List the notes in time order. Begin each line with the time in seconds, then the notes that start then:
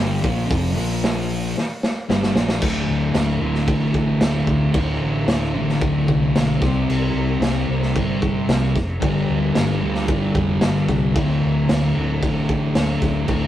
Already playing: G1 G2 D3 G3
0.23 A#1 A#2 F3 A#3, kick, open hi-hat
0.47 F1 F2 C3 F3, kick
0.52 open hi-hat
0.76 A#1 A#2 F3 A#3, open hi-hat
1.04 snare, open hi-hat
1.30 open hi-hat
1.58 snare
1.83 snare
2.09 G1 G2 D3 G3, snare
2.23 snare
2.34 A#1 A#2 F3 A#3, snare
2.49 snare
2.61 D1 D2 A2, kick, crash
2.67 D3
2.89 D1
3.14 D1, snare, crash
3.41 D1 A2 D3
3.45 D2
3.55 snare
3.68 A1, kick, crash
3.94 kick
4.20 D1, snare, crash
4.47 D1, kick
4.72 D1 D2 A2, kick, crash
4.77 D3
5.02 A1
5.27 D1, snare, crash
5.54 A1 A2 D3
5.59 D2
5.69 snare
5.81 D1, kick, crash
6.08 C2, kick
6.36 B1, snare, crash
6.61 C2 C3 G3, kick, snare
6.65 C4
6.89 C2, crash
7.14 C2
7.40 C2 C3, snare, crash
7.45 G3 C4
7.68 C2
7.83 snare
7.95 G1, kick, crash
8.22 kick
8.48 C2, snare, crash
8.76 F1, kick, snare
9.00 G1 G2 D3, kick, crash
9.04 G3
9.29 D1
9.55 G1, snare, crash
9.80 D2 D3 G3
9.85 G2
9.95 snare
10.08 G1, kick, crash
10.35 F1, kick
10.61 G1, snare, crash
10.88 C2, kick, snare
11.15 D1 D2 A2, kick, crash
11.19 D3
11.44 D1
11.69 D1, snare, crash
11.94 D1 A2 D3
11.99 D2
12.22 A1, kick, crash
12.49 kick
12.75 D1, snare, crash
13.01 D1, kick, snare
13.27 D1 D2 A2, kick, crash
13.31 D3